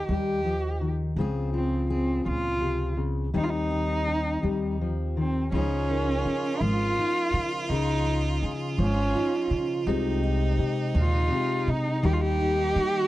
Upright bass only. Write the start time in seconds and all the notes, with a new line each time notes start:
0.09 D#2
1.16 C#2
2.26 C#2
3.34 D#2
4.43 D#2
5.52 C#2
6.25 C#3
6.61 G#1
7.33 C#3
7.70 C#2
8.42 C#3
8.78 G#1
9.51 C#3
9.87 C2
10.59 C3
10.95 D#2
11.67 C3
12.03 D#2
12.76 D#3